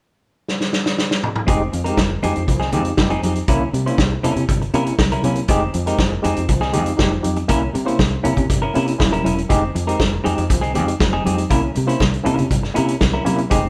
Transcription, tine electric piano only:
1.48 1.61 G#3 medium
1.48 1.61 D#4 medium
1.48 1.62 G4 medium
1.74 1.86 F3 soft
1.87 1.99 G#3 medium
1.87 2.00 D#4 medium
1.87 2.00 G4 medium
2.01 2.12 F3 medium
2.24 2.37 G#3 medium
2.24 2.35 D#4 medium
2.24 2.35 G4 medium
2.36 2.41 D#4 soft
2.36 2.41 G4 soft
2.49 2.61 F3 medium
2.73 2.86 G#3 medium
2.73 2.86 D#4 medium
2.73 2.86 G4 medium
2.87 2.91 D#4 soft
2.87 2.92 G4 soft
2.99 3.12 D#4 medium
2.99 3.12 G4 medium
3.12 3.24 F3 medium
3.25 3.37 D#4 medium
3.25 3.37 G4 medium
3.50 3.62 A#3 medium
3.50 3.62 C#4 medium
3.50 3.62 E4 loud
3.75 3.87 C3 soft
3.75 3.87 G3 soft
3.88 4.00 A#3 medium
3.88 4.00 C#4 medium
3.88 4.01 E4 medium
4.00 4.12 C3 medium
4.00 4.12 G3 medium
4.24 4.37 A#3 medium
4.24 4.36 C#4 medium
4.24 4.36 E4 medium
4.37 4.42 C#4 soft
4.37 4.42 E4 soft
4.49 4.62 C3 medium
4.49 4.62 G3 medium
4.74 4.87 A#3 medium
4.74 4.87 C#4 medium
4.74 4.87 E4 medium
4.88 4.92 C#4 soft
4.88 4.92 E4 soft
5.00 5.05 C#4 soft
5.00 5.05 E4 soft
5.13 5.25 C3 medium
5.13 5.25 G3 medium
5.24 5.37 A#3 medium
5.24 5.37 C#4 medium
5.24 5.38 E4 medium
5.49 5.62 G#3 medium
5.49 5.62 D#4 medium
5.49 5.62 G4 loud
5.74 5.87 F3 medium
5.86 5.99 G#3 medium
5.86 5.99 D#4 medium
5.86 5.99 G4 medium
5.98 6.11 F3 medium
6.22 6.36 G#3 medium
6.22 6.34 D#4 medium
6.22 6.35 G4 medium
6.35 6.41 D#4 soft
6.35 6.41 G4 soft
6.48 6.62 F3 medium
6.73 6.87 G#3 medium
6.73 6.85 D#4 medium
6.73 6.85 G4 medium
6.86 6.92 D#4 soft
6.86 6.92 G4 soft
6.97 7.11 D#4 medium
6.97 7.12 G4 medium
7.11 7.24 F3 medium
7.23 7.37 D#4 medium
7.23 7.37 G4 medium
7.48 7.62 A#3 medium
7.48 7.62 C#4 medium
7.48 7.62 E4 medium
7.73 7.87 C3 medium
7.73 7.87 G3 soft
7.85 7.99 A#3 medium
7.85 7.99 C#4 medium
7.85 7.99 E4 medium
7.98 8.12 C3 medium
7.98 8.12 G3 medium
8.23 8.37 A#3 medium
8.23 8.35 C#4 medium
8.23 8.35 E4 medium
8.36 8.42 C#4 soft
8.36 8.42 E4 soft
8.49 8.62 C3 medium
8.49 8.62 G3 medium
8.74 8.87 A#3 medium
8.74 8.85 C#4 medium
8.74 8.85 E4 medium
8.87 8.92 C#4 soft
8.87 8.92 E4 soft
8.98 9.12 C#4 medium
8.98 9.12 E4 medium
9.12 9.25 C3 medium
9.12 9.25 G3 medium
9.24 9.38 C#4 medium
9.24 9.38 E4 medium
9.49 9.63 G#3 medium
9.49 9.63 D#4 medium
9.49 9.63 G4 loud
9.75 9.88 F3 soft
9.87 10.01 G#3 medium
9.87 10.01 D#4 medium
9.87 10.01 G4 medium
10.00 10.13 F3 medium
10.24 10.38 G#3 medium
10.24 10.36 D#4 medium
10.24 10.37 G4 medium
10.37 10.43 D#4 soft
10.37 10.43 G4 soft
10.50 10.63 F3 medium
10.75 10.88 G#3 medium
10.75 10.87 D#4 medium
10.75 10.87 G4 medium
10.88 10.93 D#4 soft
10.88 10.93 G4 soft
11.00 11.13 F3 medium
11.25 11.38 G#3 medium
11.25 11.37 D#4 medium
11.25 11.37 G4 medium
11.38 11.43 D#4 soft
11.38 11.43 G4 soft
11.50 11.63 A#3 medium
11.50 11.64 C#4 medium
11.50 11.64 E4 medium
11.75 11.89 C3 medium
11.75 11.88 G3 soft
11.86 12.00 A#3 medium
11.86 12.01 C#4 medium
11.86 12.01 E4 medium
12.00 12.14 C3 soft
12.00 12.14 G3 medium
12.23 12.38 A#3 medium
12.23 12.35 C#4 medium
12.23 12.35 E4 medium
12.36 12.42 C#4 soft
12.36 12.42 E4 soft
12.49 12.63 C3 medium
12.49 12.63 G3 medium
12.74 12.88 A#3 medium
12.74 12.85 C#4 medium
12.74 12.85 E4 medium
12.86 12.93 C#4 soft
12.86 12.93 E4 soft
13.25 13.39 A#3 medium
13.25 13.39 C#4 medium
13.25 13.39 E4 medium
13.50 13.64 G#3 medium
13.50 13.64 D#4 medium
13.50 13.64 G4 medium

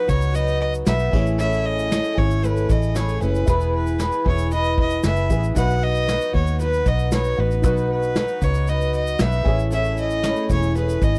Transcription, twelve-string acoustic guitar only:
0.07 0.33 B3 soft
0.07 0.34 D#4 medium
0.07 0.34 F#4 soft
0.33 0.84 F#3 medium
0.33 0.85 B3 medium
0.33 0.86 D#4 medium
0.33 0.87 F#4 medium
0.85 1.12 F#3 medium
0.85 1.13 B3 medium
0.85 1.12 D#4 medium
0.85 1.11 F#4 medium
1.11 1.38 C#4 soft
1.11 1.39 E4 medium
1.11 1.38 G#4 medium
1.38 1.89 A3 medium
1.38 1.89 C#4 medium
1.38 1.91 E4 medium
1.38 1.92 G#4 medium
1.90 2.17 A3 medium
1.90 2.17 C#4 medium
1.90 2.16 E4 medium
1.90 2.14 G#4 medium
2.15 2.42 C#4 soft
2.15 2.43 E4 soft
2.15 2.42 G#4 medium
2.42 2.93 A3 medium
2.42 2.95 C#4 medium
2.42 2.96 E4 medium
2.42 2.97 G#4 medium
2.94 3.21 A3 medium
2.94 3.22 C#4 medium
2.94 3.21 E4 medium
2.94 3.19 G#4 medium
3.21 3.47 C#4 soft
3.21 3.47 E4 medium
3.21 3.47 G#4 medium
3.47 3.97 E3 medium
3.47 3.99 B3 medium
3.47 4.00 E4 medium
3.47 4.00 G#4 medium
3.99 4.25 E3 medium
3.99 4.26 B3 medium
3.99 4.25 E4 medium
3.99 4.23 G#4 medium
4.24 4.51 B3 soft
4.24 4.52 E4 soft
4.24 4.51 G#4 medium
4.51 5.02 E3 medium
4.51 5.04 B3 medium
4.51 5.04 E4 medium
4.51 5.05 G#4 medium
5.03 5.29 E3 medium
5.03 5.30 B3 medium
5.03 5.30 E4 medium
5.03 5.29 G#4 medium
5.30 5.55 B3 soft
5.30 5.56 E4 soft
5.30 5.56 G#4 medium
5.55 6.07 B2 medium
5.55 6.05 F#3 medium
5.55 6.07 B3 medium
5.55 6.08 D#4 medium
5.55 6.08 F#4 medium
6.07 6.33 F#3 medium
6.07 6.34 B3 medium
6.07 6.33 D#4 medium
6.07 6.32 F#4 medium
6.33 6.59 B3 soft
6.33 6.60 D#4 soft
6.33 6.59 F#4 medium
6.59 7.10 F#3 soft
6.59 7.11 B3 medium
6.59 7.12 D#4 medium
6.59 7.13 F#4 medium
7.12 7.38 F#3 medium
7.12 7.38 B3 medium
7.12 7.39 D#4 medium
7.12 7.36 F#4 medium
7.37 7.64 B3 soft
7.37 7.64 D#4 soft
7.37 7.64 F#4 medium
7.64 8.16 B2 medium
7.64 8.15 F#3 medium
7.64 8.16 B3 medium
7.64 8.17 D#4 medium
7.64 8.17 F#4 medium
8.16 8.42 F#3 medium
8.16 8.42 B3 medium
8.16 8.41 D#4 medium
8.16 8.40 F#4 medium
8.41 8.67 B3 soft
8.41 8.68 D#4 medium
8.41 8.67 F#4 soft
8.67 9.18 F#3 medium
8.67 9.19 B3 medium
8.67 9.20 D#4 medium
8.67 9.20 F#4 medium
9.19 9.45 F#3 medium
9.19 9.46 B3 medium
9.19 9.46 D#4 medium
9.19 9.44 F#4 medium
9.44 9.70 C#4 soft
9.44 9.71 E4 medium
9.44 9.71 G#4 medium
9.70 10.21 A3 medium
9.70 10.23 C#4 medium
9.70 10.24 E4 medium
9.70 10.24 G#4 medium
10.22 10.49 A3 medium
10.22 10.50 C#4 medium
10.22 10.49 E4 medium
10.22 10.48 G#4 medium
10.49 10.75 C#4 soft
10.49 10.76 E4 soft
10.49 10.75 G#4 medium
10.75 11.19 A3 medium
10.75 11.19 C#4 medium
10.75 11.19 E4 medium
10.75 11.19 G#4 medium

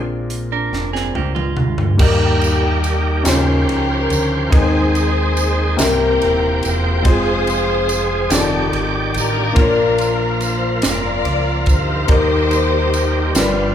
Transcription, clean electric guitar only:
0.52 0.92 D4 soft
0.52 0.92 A#4 soft
0.93 1.14 C4 medium
0.93 1.14 G#4 medium
1.16 1.36 A#3 medium
1.16 1.34 G4 medium
1.35 1.96 G#3 soft
1.35 1.96 F4 medium

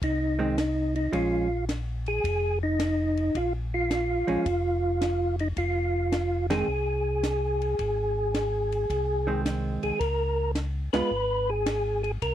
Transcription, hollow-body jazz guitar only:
0.39 0.55 D#3 medium
0.39 0.55 G#3 medium
0.39 0.56 C4 medium
1.12 1.46 F3 medium
1.12 1.47 G#3 medium
1.12 1.47 C#4 medium
4.27 4.44 F3 medium
4.27 4.44 G#3 medium
4.27 4.45 C#4 medium
6.50 6.66 D#3 medium
6.50 6.66 G#3 medium
6.50 6.67 C4 medium
9.27 9.97 D#3 soft
9.27 9.97 G#3 medium
9.27 9.97 C4 medium
10.94 11.10 G#3 medium
10.94 11.10 B3 medium
10.94 11.10 F4 medium

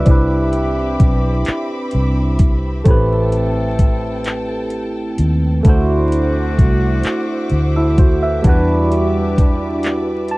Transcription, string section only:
0.00 2.82 E5 medium
0.06 2.83 C4 medium
0.06 2.83 B5 medium
0.06 2.83 D6 medium
2.85 5.62 A4 medium
2.85 5.62 G5 medium
2.85 5.62 A5 medium
5.63 8.41 C5 medium
5.63 10.38 E5 medium
5.63 8.41 F#5 medium
5.63 10.38 D6 medium
8.45 10.38 B4 medium
8.45 10.38 D5 medium

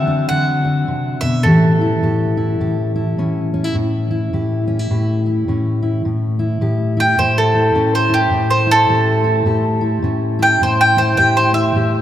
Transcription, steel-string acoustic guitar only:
0.00 0.29 D3 medium
0.00 1.42 F#3 medium
0.00 1.43 C4 medium
0.00 0.29 F#4 medium
0.07 0.64 D4 medium
0.31 0.88 D3 medium
0.31 1.46 F#4 medium
0.65 1.42 D4 medium
0.88 1.22 C3 medium
1.22 1.45 B2 medium
1.45 2.02 A2 medium
1.45 6.04 E3 medium
1.45 3.19 C#4 medium
1.45 1.81 E4 medium
1.45 2.03 G4 medium
1.81 2.37 E4 medium
2.03 2.60 A2 medium
2.03 2.61 G4 medium
2.37 2.95 E4 medium
2.60 3.18 A2 medium
2.60 3.78 G4 medium
2.96 3.53 E4 medium
3.18 3.74 A2 medium
3.18 3.54 C#4 medium
3.54 3.64 C#4 medium
3.64 3.75 E4 medium
3.75 4.32 A2 medium
4.11 4.67 E4 medium
4.33 4.89 A2 medium
4.33 4.90 G4 medium
4.68 4.79 C#4 medium
4.79 5.24 E4 soft
4.91 5.47 A2 medium
4.91 6.02 G4 medium
5.26 5.81 E4 soft
5.48 6.02 A2 medium
5.48 6.02 C#4 medium
5.82 6.02 E4 medium
6.05 6.61 A2 medium
6.39 6.96 E4 medium
6.61 7.18 A2 medium
6.61 7.19 G4 medium
6.97 7.54 E4 medium
7.19 7.74 A2 medium
7.19 8.34 G4 medium
7.54 8.09 E4 medium
7.75 8.30 A2 medium
7.75 8.93 C#4 medium
8.09 8.66 E4 medium
8.31 8.89 A2 medium
8.67 9.24 E4 medium
8.89 9.45 A2 medium
8.89 9.46 G4 medium
9.24 9.81 E4 medium
9.46 10.02 A2 medium
9.46 10.64 G4 medium
9.81 10.39 E4 medium
10.03 10.61 A2 medium
10.03 11.22 C#4 medium
10.39 10.96 E4 medium
10.61 11.18 A2 medium
10.97 11.53 E4 medium
11.18 11.75 A2 medium
11.18 11.76 G4 medium
11.53 12.02 E4 medium
11.75 12.02 A2 medium
11.75 12.02 G4 medium

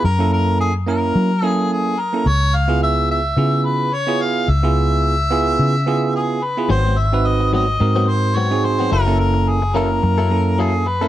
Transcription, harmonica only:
0.05 0.30 A#4 loud
0.33 0.58 A#4 medium
0.61 0.73 G#4 medium
0.89 1.46 A#4 medium
1.46 1.72 G#4 medium
1.72 2.01 G#4 medium
1.99 2.29 A#4 medium
2.28 2.56 C#5 loud
2.55 2.82 F5 loud
2.83 3.08 E5 loud
3.11 3.67 E5 medium
3.65 3.95 B4 medium
3.94 4.23 C#5 medium
4.22 4.51 F5 medium
4.49 6.15 E5 loud
6.16 6.45 G#4 medium
6.43 6.70 B4 medium
6.71 7.00 C5 loud
6.98 7.28 E5 medium
7.26 7.53 D#5 medium
7.54 8.11 D#5 medium
8.09 8.38 C5 medium
8.37 8.66 C#5 medium
8.64 8.91 C5 medium
8.92 9.18 A#4 loud
9.20 9.50 A#4 medium
9.48 9.78 G#4 medium
9.76 10.61 A#4 medium
10.60 10.89 G#4 medium
10.87 11.08 B4 medium

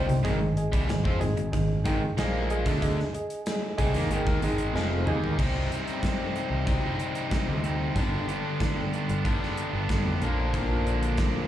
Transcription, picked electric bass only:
0.09 0.24 C2 medium
0.25 0.40 G#1 loud
0.41 0.71 G#1 medium
0.73 0.87 C2 medium
0.88 1.04 G#1 medium
1.05 1.20 F2 medium
1.21 1.36 G#1 medium
1.36 1.52 G#1 medium
1.54 1.84 G#1 medium
1.86 2.01 G#1 medium
2.02 muted picked electric bass stroke soft
2.17 2.62 A#1 medium
2.66 2.96 D2 medium
3.79 3.94 C2 medium
3.95 4.09 D#2 medium
4.09 4.25 G#1 medium
4.27 4.42 D#2 medium
4.42 4.72 G#1 medium
4.73 5.04 F1 medium
5.06 5.36 D#2 medium
5.39 5.65 C2 loud
6.50 6.77 C2 medium
7.48 7.88 D2 medium
7.96 8.23 G1 medium
9.09 9.36 G1 medium
9.73 9.87 G1 medium
9.90 10.03 G2 medium
10.06 10.19 F2 medium
10.22 11.28 A#1 medium

